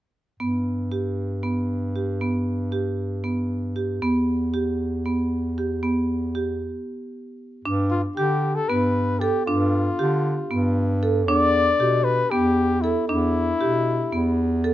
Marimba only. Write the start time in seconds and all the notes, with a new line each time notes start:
0.40 B3
0.92 G4
1.43 B3
1.96 G4
2.21 B3
2.72 G4
3.24 B3
3.76 G4
4.02 B3
4.54 G4
5.05 B3
5.58 G4
5.83 B3
6.35 G4
7.66 D4
8.17 G4
8.70 B3
9.21 A4
9.47 D4
9.99 G4
10.51 B3
11.03 A4
11.28 D4
11.80 G4
12.32 B3
12.84 A4
13.09 D4
13.61 G4
14.12 B3
14.64 A4